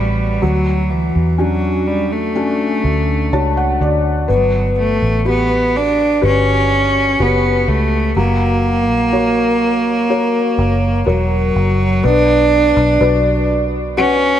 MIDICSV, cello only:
0, 0, Header, 1, 2, 480
1, 0, Start_track
1, 0, Key_signature, 2, "minor"
1, 0, Tempo, 967742
1, 207, Time_signature, 4, 2, 24, 8
1, 7141, End_track
2, 0, Start_track
2, 0, Title_t, "Cello"
2, 0, Program_c, 0, 42
2, 0, Note_on_c, 0, 55, 73
2, 207, Note_on_c, 0, 54, 85
2, 215, Note_off_c, 0, 55, 0
2, 448, Note_on_c, 0, 52, 72
2, 455, Note_off_c, 0, 54, 0
2, 697, Note_on_c, 0, 54, 77
2, 704, Note_off_c, 0, 52, 0
2, 928, Note_on_c, 0, 55, 76
2, 935, Note_off_c, 0, 54, 0
2, 1049, Note_on_c, 0, 57, 74
2, 1057, Note_off_c, 0, 55, 0
2, 1888, Note_off_c, 0, 57, 0
2, 2141, Note_on_c, 0, 54, 81
2, 2358, Note_off_c, 0, 54, 0
2, 2378, Note_on_c, 0, 57, 82
2, 2597, Note_off_c, 0, 57, 0
2, 2624, Note_on_c, 0, 59, 91
2, 2861, Note_on_c, 0, 62, 92
2, 2868, Note_off_c, 0, 59, 0
2, 3094, Note_off_c, 0, 62, 0
2, 3104, Note_on_c, 0, 61, 99
2, 3580, Note_on_c, 0, 59, 83
2, 3588, Note_off_c, 0, 61, 0
2, 3811, Note_on_c, 0, 57, 81
2, 3819, Note_off_c, 0, 59, 0
2, 4049, Note_off_c, 0, 57, 0
2, 4054, Note_on_c, 0, 58, 93
2, 5471, Note_off_c, 0, 58, 0
2, 5495, Note_on_c, 0, 54, 92
2, 5974, Note_on_c, 0, 62, 127
2, 5981, Note_off_c, 0, 54, 0
2, 6691, Note_off_c, 0, 62, 0
2, 6932, Note_on_c, 0, 61, 123
2, 7141, Note_off_c, 0, 61, 0
2, 7141, End_track
0, 0, End_of_file